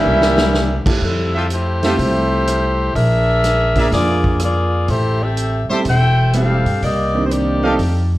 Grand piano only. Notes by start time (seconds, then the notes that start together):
0.86 A3 E4 F4 G4 A4
1.83 F3 A3 C4 E4 G4
3.76 F3 A#3 D4 G#4 E5
5.70 G3 A3 C4 E4 G4
6.34 G3 A3 C4 E4 G4
7.14 D#3 A#3 C4 D4 G4
7.63 F3 A3 C4 D#4 A4